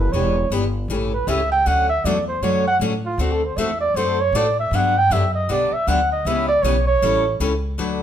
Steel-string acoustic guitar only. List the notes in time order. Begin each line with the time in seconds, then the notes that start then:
0.13 E3 B3 D4 G4
0.52 E3 B3 D4 G4
0.90 C#3 E3 A3 C#4 G4
1.28 C#3 E3 A3 C#4 G4
1.66 D3 F#3 A3 C#4 F#4
2.05 D3 F#3 A3 C#4 F#4
2.43 D3 F#3 A3 C#4 F#4
2.81 D3 F#3 A3 C#4 F#4
3.19 D3 A3 C4 F#4 A4
3.58 D3 A3 C4 F#4 A4
3.96 D3 A3 C4 F#4 A4
4.35 D3 A3 C4 F#4 A4
4.73 D3 F#3 B3 D4 G4
5.11 D3 F#3 B3 D4 G4
5.49 D3 F#3 B3 D4 G4
5.88 D3 F#3 B3 D4 G4
6.26 C#3 E3 B3 C#4 G4
6.64 C#3 E3 B3 C#4 G4
7.02 E3 G3 C#4 E4 A4
7.40 E3 G3 C#4 E4 A4
7.78 D3 F#3 A3 D4 F#4 B4